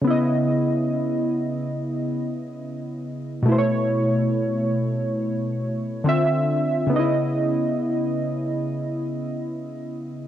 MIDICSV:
0, 0, Header, 1, 2, 480
1, 0, Start_track
1, 0, Key_signature, 4, "minor"
1, 0, Tempo, 500000
1, 9866, End_track
2, 0, Start_track
2, 0, Title_t, "Synth keys"
2, 0, Program_c, 0, 88
2, 16, Note_on_c, 0, 49, 77
2, 43, Note_on_c, 0, 59, 74
2, 72, Note_on_c, 0, 64, 76
2, 101, Note_on_c, 0, 75, 79
2, 202, Control_c, 0, 64, 127
2, 3283, Note_off_c, 0, 49, 0
2, 3289, Note_on_c, 0, 47, 78
2, 3296, Note_off_c, 0, 59, 0
2, 3311, Note_off_c, 0, 64, 0
2, 3319, Note_on_c, 0, 57, 68
2, 3325, Note_off_c, 0, 75, 0
2, 3347, Note_on_c, 0, 64, 62
2, 3349, Control_c, 0, 64, 0
2, 3377, Note_on_c, 0, 72, 76
2, 3429, Note_off_c, 0, 72, 0
2, 3440, Note_on_c, 0, 73, 84
2, 3511, Control_c, 0, 64, 127
2, 5742, Note_off_c, 0, 47, 0
2, 5757, Note_off_c, 0, 57, 0
2, 5771, Note_off_c, 0, 64, 0
2, 5796, Note_on_c, 0, 50, 79
2, 5813, Note_on_c, 0, 60, 68
2, 5816, Control_c, 0, 64, 0
2, 5818, Note_off_c, 0, 73, 0
2, 5826, Note_on_c, 0, 65, 57
2, 5840, Note_on_c, 0, 76, 85
2, 5959, Control_c, 0, 64, 127
2, 6591, Note_on_c, 0, 49, 79
2, 6619, Note_on_c, 0, 59, 72
2, 6623, Note_off_c, 0, 50, 0
2, 6631, Note_off_c, 0, 60, 0
2, 6638, Note_off_c, 0, 65, 0
2, 6639, Control_c, 0, 64, 0
2, 6645, Note_off_c, 0, 76, 0
2, 6650, Note_on_c, 0, 63, 59
2, 6680, Note_on_c, 0, 75, 76
2, 6711, Note_off_c, 0, 63, 0
2, 6713, Note_on_c, 0, 64, 75
2, 6814, Control_c, 0, 64, 127
2, 9862, Note_off_c, 0, 49, 0
2, 9866, Note_off_c, 0, 59, 0
2, 9866, Note_off_c, 0, 64, 0
2, 9866, Note_off_c, 0, 75, 0
2, 9866, End_track
0, 0, End_of_file